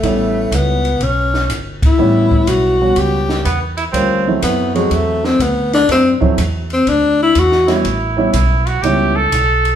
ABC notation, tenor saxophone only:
X:1
M:4/4
L:1/8
Q:"Swing" 1/4=123
K:Amix
V:1 name="Tenor saxophone"
A,2 B,2 C2 z E- | E2 F2 G2 z2 | z2 B, ^G, A, =C B, D | =C z2 C D E F z |
z8 |]